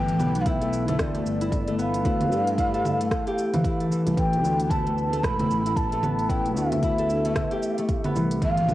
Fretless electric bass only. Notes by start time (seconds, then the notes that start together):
Already playing: G1
0.19 B1
0.99 D2
1.25 G1
2.05 D2
2.32 G2
4.07 C2
4.17 A1
4.44 D2
5.24 E1
5.50 A1
6.30 A1
6.56 D2
8.16 C2
8.42 G1
8.68 B1